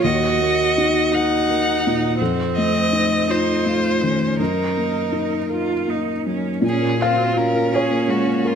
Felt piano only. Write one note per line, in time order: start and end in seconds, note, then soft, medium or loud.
0.04 2.16 D#2 medium
0.41 0.98 A#3 medium
0.78 1.35 D#4 medium
1.14 1.71 F#4 medium
1.49 2.06 A#3 soft
1.87 2.21 A#2 soft
2.21 4.36 F2 medium
2.58 3.15 A3 soft
2.93 3.51 D#4 soft
3.29 3.88 F4 soft
3.66 4.25 A3 soft
4.03 4.40 D#3 soft
4.39 6.59 F#2 soft
4.77 5.36 A#3 soft
5.12 5.73 D#4 soft
5.50 6.10 A#4 soft
5.88 6.48 A#3 soft
6.26 6.63 F#3 soft
6.62 8.55 A#2 medium
6.81 7.10 A#3 soft
6.98 7.28 F4 medium
7.02 7.70 F5 loud
7.16 7.35 F#4 soft
7.35 7.65 F4 soft
7.54 7.83 A#3 medium
7.72 8.01 F4 medium
7.72 8.55 C#5 medium
7.91 8.20 A#3 soft
8.08 8.27 G#3 medium
8.26 8.55 A#3 soft
8.45 8.55 A#4 medium